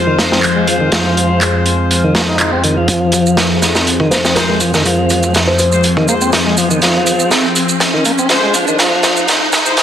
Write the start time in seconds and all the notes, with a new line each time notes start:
Already playing: F2 F3 G#3 C4 F4 G#4 C5 F5
0.07 D#3
0.19 A#3, snare, closed hi-hat
0.32 C4, snare
0.43 clap, closed hi-hat
0.56 G#3
0.67 F3, closed hi-hat
0.80 D#3
0.92 F3, snare, closed hi-hat
1.17 closed hi-hat
1.41 clap, closed hi-hat
1.66 closed hi-hat
1.91 closed hi-hat
2.04 D#3
2.15 A#3, snare, closed hi-hat
2.29 D#4
2.38 D#4, clap, closed hi-hat
2.53 C4
2.64 D#3, closed hi-hat
2.77 F3
2.88 F2 F3 C4 G#4 C5, kick, closed hi-hat, riser, shaker
3.12 kick, closed hi-hat, shaker
3.26 shaker
3.37 snare, closed hi-hat, shaker
3.62 snare, closed hi-hat, shaker
3.75 snare, shaker
3.87 closed hi-hat, shaker
4.00 D#3, kick
4.11 A#3 C5, snare, closed hi-hat, shaker
4.25 C4, snare, shaker
4.35 G#3 F4 A#4 C5, snare, closed hi-hat, shaker
4.48 G#3 A#4
4.60 F3, kick, closed hi-hat, shaker
4.74 D#3, snare, shaker
4.85 F3, kick, closed hi-hat, shaker
5.10 kick, closed hi-hat, shaker
5.23 kick, shaker
5.34 snare, closed hi-hat, shaker
5.47 C5
5.59 C5, closed hi-hat, shaker
5.72 G#3 F4 C5, shaker
5.83 closed hi-hat, shaker
5.97 D#3, kick
6.08 G#3 A#3 F4 C5, shaker
6.21 C4, shaker
6.33 snare, closed hi-hat, shaker
6.46 G#3
6.58 F3, closed hi-hat, shaker
6.71 D#3, shaker
6.82 F3, snare, closed hi-hat, shaker
7.07 closed hi-hat, shaker
7.20 shaker
7.31 snare, closed hi-hat, shaker
7.56 closed hi-hat, shaker
7.69 shaker
7.80 snare, closed hi-hat, shaker
7.94 D#3
8.05 A#3, closed hi-hat, shaker
8.18 C4, shaker
8.29 G#3 F4 C5, snare, closed hi-hat, shaker
8.43 G#3
8.54 F3, closed hi-hat, shaker
8.67 D#3, shaker
8.79 F3, snare, closed hi-hat, shaker
9.03 snare, closed hi-hat, shaker
9.17 shaker
9.28 snare, closed hi-hat, shaker
9.53 snare, closed hi-hat, shaker
9.66 G#3 F4 C5, shaker
9.77 snare, closed hi-hat, shaker